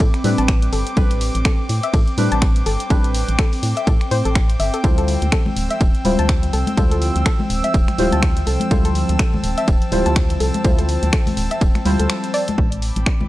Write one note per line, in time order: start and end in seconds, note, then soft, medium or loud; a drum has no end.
0.00 0.11 A2 loud
0.00 0.22 G3 medium
0.00 0.22 C4 medium
0.00 6.06 C4 medium
0.00 12.54 C4 medium
0.00 0.22 D4 medium
0.00 0.05 A4 medium
0.00 0.22 B4 medium
0.00 8.67 G5 medium
0.00 13.28 G5 medium
0.00 0.93 B5 medium
0.00 4.80 D6 medium
0.00 kick loud
0.00 ride medium
0.00 downlifter medium
0.14 finger snap soft
0.14 closed hi-hat soft
0.24 0.35 A2 medium
0.24 0.94 G3 medium
0.24 0.94 C4 medium
0.24 0.94 D4 medium
0.24 0.95 B4 loud
0.24 open hi-hat loud
0.38 0.69 A1 loud
0.38 0.44 A5 medium
0.38 closed hi-hat medium
0.48 finger snap loud
0.48 kick loud
0.48 ride medium
0.62 closed hi-hat medium
0.73 0.84 G1 medium
0.73 0.77 A4 medium
0.73 open hi-hat loud
0.87 closed hi-hat medium
0.96 1.30 A1 loud
0.96 2.15 G3 medium
0.96 2.15 C4 medium
0.96 2.15 D4 medium
0.96 1.02 A4 medium
0.96 2.16 B4 medium
0.96 kick loud
0.96 ride medium
1.11 closed hi-hat medium
1.21 open hi-hat loud
1.35 1.43 A1 loud
1.35 closed hi-hat medium
1.45 1.53 A4 medium
1.45 finger snap loud
1.45 kick loud
1.45 ride medium
1.69 1.80 A2 medium
1.69 open hi-hat loud
1.83 1.89 E5 medium
1.83 closed hi-hat medium
1.94 2.04 A2 loud
1.94 1.98 A4 medium
1.94 kick loud
1.94 ride medium
2.08 closed hi-hat soft
2.17 2.29 A2 medium
2.17 2.88 G3 medium
2.17 2.88 C4 medium
2.17 2.88 D4 medium
2.17 2.88 B4 loud
2.17 open hi-hat loud
2.32 2.63 A1 loud
2.32 2.38 A5 medium
2.32 closed hi-hat medium
2.42 finger snap loud
2.42 kick loud
2.42 ride medium
2.56 closed hi-hat medium
2.66 2.77 G1 medium
2.66 2.71 A4 medium
2.66 open hi-hat loud
2.80 closed hi-hat medium
2.90 3.24 A1 loud
2.90 4.09 G3 medium
2.90 4.09 C4 medium
2.90 4.09 D4 medium
2.90 2.95 A4 medium
2.90 4.09 B4 medium
2.90 kick loud
2.90 ride medium
3.04 closed hi-hat medium
3.14 open hi-hat loud
3.29 3.36 A1 loud
3.29 closed hi-hat medium
3.39 3.47 A4 medium
3.39 finger snap loud
3.39 kick loud
3.39 ride medium
3.53 open hi-hat medium
3.63 3.74 A2 medium
3.63 open hi-hat loud
3.77 3.83 E5 medium
3.77 closed hi-hat medium
3.87 3.98 A2 loud
3.87 3.92 A4 medium
3.87 kick loud
3.87 ride medium
4.01 finger snap soft
4.01 closed hi-hat soft
4.11 4.22 A2 medium
4.11 4.19 C5 loud
4.11 open hi-hat loud
4.25 4.56 A1 loud
4.25 4.31 A4 medium
4.25 closed hi-hat medium
4.35 finger snap loud
4.35 kick loud
4.35 ride medium
4.50 closed hi-hat medium
4.60 4.71 G1 medium
4.60 4.65 E5 medium
4.60 open hi-hat loud
4.74 4.83 A4 medium
4.74 closed hi-hat medium
4.83 5.17 D2 loud
4.83 12.58 F3 medium
4.83 6.02 G3 medium
4.83 6.02 E4 medium
4.83 6.03 F4 medium
4.83 4.89 A4 medium
4.83 6.03 C5 medium
4.83 12.54 E6 medium
4.83 kick loud
4.83 ride medium
4.98 5.01 A4 medium
4.98 12.58 C5 medium
4.98 closed hi-hat medium
5.08 open hi-hat loud
5.22 5.30 D2 loud
5.22 closed hi-hat medium
5.22 muted conga soft
5.32 5.40 A4 medium
5.32 finger snap loud
5.32 kick loud
5.32 ride medium
5.46 high conga medium
5.46 low conga medium
5.56 5.67 D1 medium
5.56 open hi-hat loud
5.70 5.76 E5 medium
5.70 closed hi-hat medium
5.77 5.92 D1 loud
5.77 9.96 E6 medium
5.77 kick loud
5.77 ride medium
5.77 muted conga soft
5.95 closed hi-hat soft
6.04 6.16 D1 medium
6.04 6.75 G3 medium
6.04 6.75 E4 medium
6.04 6.75 F4 medium
6.04 6.75 C5 loud
6.04 open hi-hat loud
6.04 high conga medium
6.19 6.50 D2 loud
6.19 6.25 A5 medium
6.19 closed hi-hat medium
6.29 finger snap loud
6.29 kick loud
6.29 ride medium
6.43 closed hi-hat medium
6.53 6.64 C2 medium
6.53 6.58 A4 medium
6.53 open hi-hat loud
6.67 closed hi-hat medium
6.67 high conga medium
6.77 7.11 D2 loud
6.77 7.96 G3 medium
6.77 7.96 E4 medium
6.77 7.96 F4 medium
6.77 6.82 A4 medium
6.77 7.96 C5 medium
6.77 kick loud
6.77 ride medium
6.91 6.95 A4 medium
6.91 closed hi-hat medium
7.02 open hi-hat loud
7.16 7.24 D2 loud
7.16 closed hi-hat medium
7.16 muted conga medium
7.26 7.34 A4 medium
7.26 finger snap loud
7.26 kick loud
7.26 ride medium
7.39 high conga medium
7.39 low conga medium
7.50 7.61 D1 medium
7.50 open hi-hat loud
7.64 7.70 E5 medium
7.64 closed hi-hat medium
7.64 muted conga soft
7.74 7.85 D1 loud
7.74 kick loud
7.74 ride medium
7.88 finger snap soft
7.88 closed hi-hat soft
7.88 muted conga medium
7.98 8.09 D1 loud
7.98 8.68 G3 medium
7.98 8.68 E4 medium
7.98 8.69 F4 medium
7.98 8.69 C5 loud
7.98 open hi-hat loud
7.98 high conga medium
8.12 8.43 D2 loud
8.12 8.18 A5 medium
8.12 closed hi-hat medium
8.23 finger snap loud
8.23 kick loud
8.23 ride medium
8.37 closed hi-hat medium
8.47 8.58 C2 medium
8.47 8.52 A4 medium
8.47 open hi-hat loud
8.60 closed hi-hat medium
8.60 high conga medium
8.71 9.04 D2 loud
8.71 9.89 G3 medium
8.71 9.89 E4 medium
8.71 9.90 F4 medium
8.71 8.76 A4 medium
8.71 9.90 C5 medium
8.71 12.54 A5 medium
8.71 kick loud
8.71 ride medium
8.85 8.89 A4 medium
8.85 closed hi-hat medium
8.95 open hi-hat loud
9.09 9.17 D2 loud
9.09 closed hi-hat medium
9.09 muted conga medium
9.19 9.27 A4 medium
9.19 finger snap loud
9.19 kick loud
9.19 ride medium
9.34 high conga medium
9.34 low conga medium
9.44 9.54 D1 medium
9.44 open hi-hat loud
9.58 9.63 E5 medium
9.58 closed hi-hat medium
9.68 9.79 D1 loud
9.68 kick loud
9.68 ride medium
9.68 muted conga medium
9.82 closed hi-hat soft
9.91 10.03 D1 loud
9.91 10.62 G3 medium
9.91 10.62 E4 medium
9.91 10.62 F4 medium
9.91 10.62 C5 loud
9.91 open hi-hat loud
9.91 high conga medium
10.06 10.37 D2 loud
10.06 10.12 A5 medium
10.06 closed hi-hat medium
10.16 finger snap loud
10.16 kick loud
10.16 ride medium
10.30 closed hi-hat medium
10.40 10.51 C2 medium
10.40 10.45 A4 medium
10.40 open hi-hat loud
10.54 closed hi-hat medium
10.54 high conga medium
10.64 10.98 D2 loud
10.64 11.83 G3 medium
10.64 11.83 E4 medium
10.64 11.83 F4 medium
10.64 10.69 A4 medium
10.64 11.83 C5 medium
10.64 kick loud
10.64 ride medium
10.79 10.82 A4 medium
10.79 closed hi-hat medium
10.89 open hi-hat loud
11.03 11.11 D2 loud
11.03 closed hi-hat medium
11.03 muted conga medium
11.13 11.21 A4 medium
11.13 finger snap loud
11.13 kick loud
11.13 ride medium
11.26 open hi-hat medium
11.26 high conga medium
11.26 low conga medium
11.37 11.48 D1 medium
11.37 open hi-hat loud
11.51 11.57 E5 medium
11.51 closed hi-hat medium
11.51 muted conga soft
11.61 11.72 D1 loud
11.61 kick loud
11.61 ride medium
11.75 finger snap soft
11.75 closed hi-hat soft
11.75 muted conga medium
11.85 11.96 D2 medium
11.85 12.55 G3 medium
11.85 12.56 E4 medium
11.85 12.56 F4 medium
11.85 12.56 C5 loud
11.85 open hi-hat loud
11.85 high conga medium
11.99 12.07 D2 medium
11.99 12.05 A4 medium
11.99 closed hi-hat medium
12.10 finger snap loud
12.10 ride medium
12.24 closed hi-hat medium
12.34 12.39 D5 loud
12.34 open hi-hat loud
12.48 closed hi-hat medium
12.48 high conga loud
12.58 12.91 A1 loud
12.58 13.28 G3 medium
12.58 13.28 C4 medium
12.58 13.28 D4 medium
12.58 13.28 B4 medium
12.58 13.28 G5 medium
12.58 13.28 B5 medium
12.58 13.28 D6 medium
12.58 kick loud
12.67 13.28 B5 medium
12.72 closed hi-hat medium
12.82 open hi-hat loud
12.90 13.28 D5 medium
12.96 13.04 A1 medium
12.96 closed hi-hat medium
12.96 muted conga medium
13.06 finger snap loud
13.06 kick loud
13.21 high conga medium
13.21 low conga medium